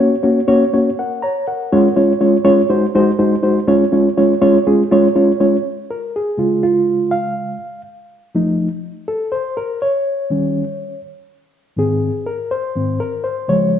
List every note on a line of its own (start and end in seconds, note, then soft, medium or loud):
0.00 0.14 A#3 medium
0.00 0.14 C#4 medium
0.00 0.14 F#4 medium
0.00 0.14 C#5 medium
0.23 0.39 A#3 medium
0.23 0.39 C#4 medium
0.23 0.39 F#4 medium
0.23 0.39 C#5 medium
0.48 0.64 A#3 loud
0.48 0.64 C#4 medium
0.48 0.64 F#4 medium
0.48 0.64 C#5 loud
0.74 0.89 A#3 medium
0.74 0.89 C#4 medium
0.74 0.89 F#4 medium
0.74 0.89 C#5 medium
0.99 1.22 A#4 soft
0.99 1.21 F#5 medium
1.22 1.46 C#5 medium
1.22 1.45 A#5 medium
1.47 1.94 A#4 soft
1.47 1.94 F#5 medium
1.72 1.87 G#3 loud
1.72 1.87 C#4 medium
1.72 1.87 F4 medium
1.72 1.87 C#5 loud
1.96 2.12 G#3 medium
1.96 2.12 C#4 medium
1.96 2.12 F4 medium
1.96 2.12 C#5 medium
2.21 2.36 G#3 medium
2.21 2.36 C#4 medium
2.21 2.36 F4 medium
2.21 2.36 C#5 medium
2.45 2.60 G#3 loud
2.45 2.60 C#4 medium
2.45 2.60 F4 medium
2.45 2.60 C#5 loud
2.69 2.85 G#3 medium
2.69 2.85 D#4 medium
2.69 2.85 F#4 medium
2.69 2.85 C5 medium
2.95 3.10 G#3 medium
2.95 3.10 D#4 medium
2.95 3.10 F#4 medium
2.95 3.10 C5 loud
3.19 3.34 G#3 medium
3.19 3.34 D#4 medium
3.19 3.34 F#4 medium
3.19 3.34 C5 medium
3.43 3.59 G#3 medium
3.43 3.59 D#4 medium
3.43 3.59 F#4 medium
3.43 3.59 C5 medium
3.67 3.83 G#3 medium
3.67 3.83 C#4 medium
3.67 3.83 F4 medium
3.67 3.84 C#5 loud
3.92 4.08 G#3 medium
3.92 4.08 C#4 medium
3.92 4.08 F4 medium
3.92 4.08 C#5 medium
4.17 4.33 G#3 medium
4.17 4.33 C#4 medium
4.17 4.33 F4 medium
4.17 4.33 C#5 medium
4.41 4.57 G#3 loud
4.41 4.57 C#4 medium
4.41 4.57 F4 medium
4.41 4.57 C#5 loud
4.67 4.82 G#3 medium
4.67 4.82 C#4 medium
4.67 4.82 F4 medium
4.67 4.82 G#4 medium
4.91 5.07 G#3 loud
4.91 5.07 C#4 medium
4.91 5.07 F4 medium
4.91 5.07 C#5 loud
5.15 5.31 G#3 medium
5.15 5.31 C#4 medium
5.15 5.31 F4 medium
5.15 5.31 C#5 medium
5.40 5.56 G#3 medium
5.40 5.56 C#4 medium
5.40 5.56 F4 medium
5.40 5.56 C#5 medium
5.91 6.15 A#4 medium
6.16 6.65 G#4 medium
6.38 7.57 C#3 medium
6.38 7.57 G#3 soft
6.38 6.62 F4 medium
6.63 7.13 F4 medium
7.11 7.81 F5 medium
8.35 8.67 F3 medium
8.35 8.67 A3 medium
8.35 8.68 D#4 medium
9.08 9.33 A4 medium
9.32 9.57 C5 medium
9.57 9.80 A#4 medium
9.82 11.00 C#5 medium
10.30 10.63 D#3 medium
10.30 10.63 G3 medium
10.30 10.63 C#4 medium
11.77 12.09 G#2 medium
11.77 12.10 D#3 medium
11.77 12.10 C4 medium
11.77 12.29 G#4 medium
12.26 12.52 A#4 medium
12.51 13.01 C5 medium
12.76 12.98 G#2 soft
12.76 12.98 D#3 soft
12.76 12.98 C4 medium
13.00 13.25 A#4 medium
13.24 13.49 C5 medium
13.48 13.79 C#3 medium
13.48 13.79 F3 soft
13.48 13.79 G#3 medium
13.48 13.79 C#5 medium